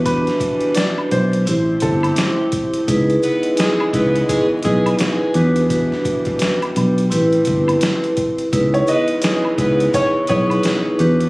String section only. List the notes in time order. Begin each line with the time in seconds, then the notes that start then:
Already playing: B2 E3 G3 D4
1.46 A3 C4 G4
2.88 C#3 E3 G#3 B3
5.36 E3 G3 D4
7.12 A3 C4
8.52 B2 C#3 E3 G#3
10.99 E3 G3 D4